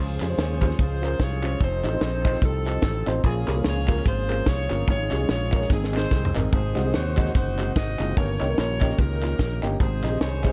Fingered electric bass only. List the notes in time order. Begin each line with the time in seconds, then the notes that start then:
Already playing: C#2
0.21 F2
0.38 D#2
0.79 C#2
1.20 C2
1.60 F1
1.84 A1
2.01 A#1
2.42 C2
2.83 A1
3.07 A1
3.24 A#1
3.48 C2
3.65 C#2
4.06 G#1
4.46 C2
4.71 G1
4.88 G#1
5.12 C2
5.29 A#1
5.70 G#1
6.11 C2
6.35 G#1
6.53 G#1
6.77 C2
6.95 D#2
7.35 F#1
7.76 G#1
8.00 F#1
8.17 G1
8.41 C2
8.58 A#1
8.99 C#2
9.39 A#1
9.63 G1
9.80 G#1
10.04 A#1
10.21 C2